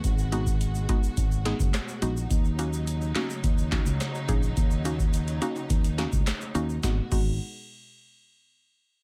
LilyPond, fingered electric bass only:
\new Staff \with { instrumentName = "Fingered electric bass" } { \clef bass \time 4/4 \key gis \minor \tempo 4 = 106 gis,,4. r8 gis,,8. fis,,16 r8 ais,,8 | dis,4. r8 dis,8. cis,16 r8 ais,,8 | dis,4. r8 dis,8. cis,16 r8 dis,8 | gis,,16 r16 gis,,8 r2. | }